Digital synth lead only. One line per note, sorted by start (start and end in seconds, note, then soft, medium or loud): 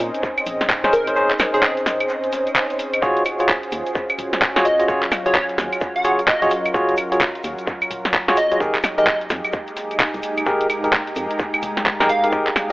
0.93 1.11 A#4 medium
1.54 1.60 G#4 medium
1.63 1.72 G#4 medium
4.65 4.84 D#5 medium
5.26 5.32 C#5 medium
5.35 5.44 C#5 medium
5.96 6.11 F#5 medium
6.28 6.66 D#5 medium
8.37 8.56 D#5 medium
8.98 9.04 D#5 medium
9.07 9.16 D#5 medium
12.09 12.28 F5 loud